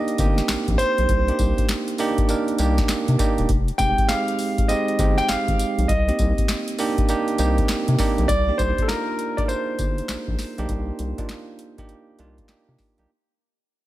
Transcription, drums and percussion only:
0.08 closed hi-hat soft
0.18 kick loud
0.18 closed hi-hat medium
0.18 tambourine medium
0.38 snare medium
0.38 closed hi-hat medium
0.49 snare loud
0.49 clap loud
0.49 closed hi-hat medium
0.49 tambourine loud
0.68 kick loud
0.68 closed hi-hat medium
0.79 closed hi-hat medium
0.79 tambourine medium
0.98 closed hi-hat soft
1.09 kick loud
1.09 closed hi-hat medium
1.28 closed hi-hat medium
1.39 kick medium
1.39 closed hi-hat medium
1.39 tambourine medium
1.58 kick loud
1.58 closed hi-hat medium
1.69 snare loud
1.69 clap loud
1.69 closed hi-hat medium
1.69 tambourine loud
1.88 closed hi-hat medium
1.98 open hi-hat medium
1.98 tambourine medium
2.18 kick loud
2.18 closed hi-hat medium
2.29 closed hi-hat medium
2.29 tambourine medium
2.48 closed hi-hat soft
2.58 closed hi-hat medium
2.58 tambourine medium
2.78 kick medium
2.78 snare medium
2.78 closed hi-hat medium
2.89 snare loud
2.89 clap loud
2.89 closed hi-hat medium
2.89 tambourine loud
3.08 closed hi-hat medium
3.19 kick loud
3.19 closed hi-hat medium
3.19 tambourine medium
3.38 closed hi-hat medium
3.49 kick loud
3.49 closed hi-hat medium
3.68 closed hi-hat medium
3.79 kick medium
3.79 closed hi-hat medium
3.79 tambourine medium
3.98 kick loud
3.98 closed hi-hat medium
4.09 snare loud
4.09 clap loud
4.09 closed hi-hat medium
4.09 tambourine loud
4.28 closed hi-hat medium
4.39 open hi-hat medium
4.39 tambourine medium
4.58 kick loud
4.58 closed hi-hat medium
4.69 closed hi-hat medium
4.69 tambourine medium
4.88 closed hi-hat soft
4.99 kick loud
4.99 closed hi-hat medium
4.99 tambourine medium
5.18 snare medium
5.18 closed hi-hat medium
5.29 snare loud
5.29 clap loud
5.29 closed hi-hat medium
5.29 tambourine loud
5.48 kick loud
5.48 closed hi-hat medium
5.59 closed hi-hat medium
5.59 tambourine medium
5.79 closed hi-hat medium
5.89 kick loud
5.89 closed hi-hat medium
6.09 closed hi-hat medium
6.19 kick medium
6.19 closed hi-hat medium
6.19 tambourine medium
6.38 kick loud
6.38 closed hi-hat medium
6.49 snare loud
6.49 clap loud
6.49 closed hi-hat medium
6.49 tambourine loud
6.68 closed hi-hat medium
6.79 open hi-hat medium
6.79 tambourine medium
6.98 kick loud
6.98 closed hi-hat medium
7.08 closed hi-hat medium
7.08 tambourine medium
7.28 closed hi-hat soft
7.38 closed hi-hat medium
7.38 tambourine medium
7.58 kick loud
7.58 closed hi-hat medium
7.69 snare loud
7.69 clap loud
7.69 closed hi-hat medium
7.69 tambourine loud
7.88 closed hi-hat medium
7.99 kick medium
7.99 snare medium
7.99 open hi-hat medium
7.99 tambourine medium
8.18 closed hi-hat medium
8.29 kick loud
8.29 closed hi-hat medium
8.29 tambourine medium
8.59 kick medium
8.59 closed hi-hat medium
8.59 tambourine medium
8.78 kick loud
8.78 closed hi-hat medium
8.89 snare loud
8.89 clap loud
8.89 closed hi-hat medium
8.89 tambourine loud
9.19 closed hi-hat medium
9.38 kick loud
9.38 closed hi-hat medium
9.49 closed hi-hat medium
9.49 tambourine medium
9.79 kick loud
9.79 closed hi-hat medium
9.79 tambourine medium
9.98 closed hi-hat medium
10.09 snare loud
10.09 clap loud
10.09 closed hi-hat medium
10.09 tambourine loud
10.28 kick loud
10.39 snare medium
10.39 open hi-hat medium
10.39 tambourine medium
10.58 closed hi-hat soft
10.69 kick loud
10.69 closed hi-hat medium
10.99 closed hi-hat medium
11.18 kick medium
11.18 closed hi-hat medium
11.29 snare loud
11.29 clap medium
11.29 closed hi-hat medium
11.59 closed hi-hat medium
11.78 kick loud
11.78 closed hi-hat medium
11.89 closed hi-hat medium
12.19 closed hi-hat medium
12.38 kick medium
12.38 closed hi-hat medium
12.49 snare loud
12.49 clap loud
12.49 closed hi-hat medium
12.78 kick medium
12.78 snare medium
12.78 open hi-hat medium
12.98 closed hi-hat medium

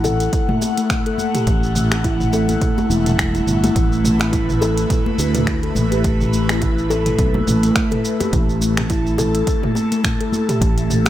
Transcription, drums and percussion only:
0.04 mid tom medium
0.04 high bongo medium
0.04 shaker medium
0.20 closed hi-hat soft
0.20 shaker soft
0.33 kick loud
0.33 closed hi-hat medium
0.33 shaker soft
0.49 mid tom medium
0.49 high conga medium
0.62 high bongo soft
0.62 shaker medium
0.78 closed hi-hat soft
0.78 shaker soft
0.90 finger snap medium
0.90 kick loud
0.90 closed hi-hat soft
0.90 mid tom medium
0.90 high bongo soft
0.90 shaker soft
1.06 closed hi-hat soft
1.18 high conga medium
1.18 shaker medium
1.35 closed hi-hat soft
1.35 mid tom medium
1.35 shaker soft
1.47 kick loud
1.47 closed hi-hat medium
1.47 shaker soft
1.63 shaker soft
1.75 mid tom medium
1.75 shaker medium
1.92 finger snap medium
1.92 closed hi-hat soft
1.92 high bongo medium
1.92 shaker soft
2.04 kick loud
2.04 closed hi-hat medium
2.04 shaker soft
2.20 mid tom medium
2.20 shaker soft
2.33 high bongo medium
2.33 shaker medium
2.48 closed hi-hat soft
2.48 high conga medium
2.48 shaker soft
2.61 kick loud
2.61 closed hi-hat soft
2.61 mid tom medium
2.61 shaker soft
2.78 high bongo soft
2.78 high conga medium
2.78 shaker soft
2.91 shaker medium
3.06 closed hi-hat soft
3.06 mid tom medium
3.06 shaker soft
3.19 finger snap medium
3.19 kick loud
3.19 closed hi-hat medium
3.19 shaker soft
3.35 closed hi-hat soft
3.35 high bongo soft
3.35 shaker soft
3.47 mid tom medium
3.47 shaker medium
3.64 closed hi-hat soft
3.64 high bongo medium
3.64 high conga medium
3.64 shaker soft
3.76 kick loud
3.76 closed hi-hat medium
3.76 shaker soft
3.92 shaker soft
4.05 mid tom medium
4.05 shaker medium
4.20 finger snap medium
4.20 closed hi-hat soft
4.20 high bongo medium
4.20 shaker soft
4.33 kick loud
4.33 closed hi-hat medium
4.33 shaker soft
4.49 mid tom medium
4.49 shaker soft
4.62 high bongo medium
4.62 shaker medium
4.78 closed hi-hat soft
4.78 shaker soft
4.90 kick loud
4.90 closed hi-hat medium
4.90 mid tom medium
4.90 shaker soft
5.06 high conga medium
5.19 high bongo soft
5.19 shaker medium
5.35 closed hi-hat soft
5.35 mid tom medium
5.35 shaker soft
5.47 finger snap medium
5.47 kick loud
5.47 closed hi-hat medium
5.47 high bongo soft
5.47 shaker soft
5.63 closed hi-hat soft
5.75 mid tom medium
5.75 high conga medium
5.75 shaker medium
5.92 closed hi-hat soft
5.92 shaker soft
6.04 kick loud
6.04 closed hi-hat medium
6.04 shaker soft
6.21 mid tom medium
6.21 shaker soft
6.33 shaker medium
6.49 finger snap medium
6.49 closed hi-hat soft
6.49 high bongo medium
6.49 shaker soft
6.61 kick loud
6.61 closed hi-hat medium
6.61 mid tom medium
6.61 shaker soft
6.78 shaker soft
6.90 high bongo medium
6.90 shaker medium
7.06 closed hi-hat soft
7.06 mid tom medium
7.06 shaker soft
7.19 kick loud
7.19 closed hi-hat medium
7.19 shaker soft
7.34 high bongo soft
7.34 high conga medium
7.47 mid tom medium
7.47 shaker medium
7.63 closed hi-hat soft
7.63 shaker soft
7.76 finger snap medium
7.76 kick loud
7.76 closed hi-hat medium
7.76 shaker soft
7.91 closed hi-hat soft
7.91 mid tom medium
7.91 high bongo soft
8.05 shaker medium
8.20 closed hi-hat soft
8.20 high bongo medium
8.20 high conga medium
8.20 shaker soft
8.33 kick loud
8.33 closed hi-hat medium
8.33 mid tom medium
8.33 shaker soft
8.49 shaker soft
8.62 shaker medium
8.77 finger snap medium
8.77 closed hi-hat medium
8.77 mid tom medium
8.77 high bongo medium
8.77 shaker soft
8.90 kick loud
8.90 closed hi-hat medium
8.90 shaker soft
9.06 shaker soft
9.18 mid tom medium
9.18 high bongo medium
9.18 shaker medium
9.35 closed hi-hat soft
9.35 shaker soft
9.47 kick loud
9.47 closed hi-hat medium
9.47 shaker soft
9.63 mid tom medium
9.63 high conga medium
9.75 high bongo medium
9.75 shaker medium
9.92 closed hi-hat soft
9.92 shaker soft
10.04 finger snap medium
10.04 kick loud
10.04 closed hi-hat medium
10.04 mid tom medium
10.04 high bongo soft
10.04 shaker soft
10.21 closed hi-hat soft
10.33 high conga medium
10.33 shaker medium
10.49 closed hi-hat soft
10.49 mid tom medium
10.49 shaker soft
10.61 kick loud
10.61 closed hi-hat medium
10.61 shaker soft
10.78 closed hi-hat soft
10.78 shaker soft
10.90 mid tom medium
10.90 high conga soft
10.90 shaker medium
11.06 finger snap medium
11.06 closed hi-hat soft
11.06 high bongo medium

